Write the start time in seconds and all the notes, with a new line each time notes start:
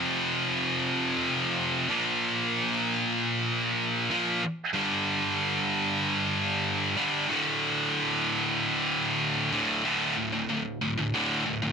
Already playing: F2 C3 F3
1.88 A#2 F3 A#3
4.11 A#2 F3 A#3
4.74 G2 D3 G3
6.97 G2 D3 G3
7.29 D2 A2 D3
9.52 D2 A2 D3
9.84 D2 A2 D3
10.17 D2 A2
10.32 D2 A2
10.49 D2 A2
10.81 D2 A2
10.98 D2 A2
11.14 D2 A2 D3
11.46 D2 A2
11.62 D2 A2